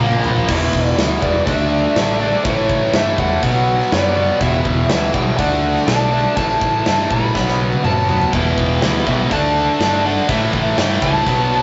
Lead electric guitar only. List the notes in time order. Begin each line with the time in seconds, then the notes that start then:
0.00 G5 D6
0.26 B5
0.50 E5
1.22 D5
1.46 E5
2.20 D5
2.44 C#5
2.95 E5
3.19 F#5
3.92 D5
4.41 E5
4.90 E5
5.13 G5
5.37 F#5
5.87 A5
6.36 A5
7.11 B5
7.84 A5
8.33 G5
9.07 E5
9.33 A5
10.05 F#5
10.29 E5
10.78 G5
11.03 A5